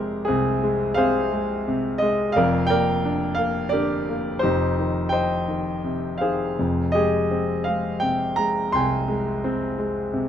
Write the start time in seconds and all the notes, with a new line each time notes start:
Already playing: F1 F2 C3 G#3 G4 G#4 A#4 C5 D5
0.25 C2 C4 G#4
0.63 G#3
0.94 C3 G#4 C5 F5
1.33 G#3
1.68 C3
1.98 G#3 D#5
2.32 F1 A#4 D5 F5
2.36 F2
2.67 A#4 D5 G5
2.71 A#3
3.05 D4
3.35 F5
3.39 A#3
3.69 G4 A#4 D5
3.74 D3
4.09 A#3
4.39 D#4 G4 C5
4.44 F1 F2
4.78 D#3
5.09 C5 D#5 G5
5.48 D#3
5.84 C3
6.18 G#4 C5 F5
6.22 D#3
6.59 F1 F2
6.92 G#3 G4 G#4 D#5
7.31 C4
7.64 G#3 F5
8.00 C3 G5
8.36 G#3 A#5
8.72 C2 G5 G#5 C6
9.08 G#3
9.44 C4
9.78 G#3
10.14 C3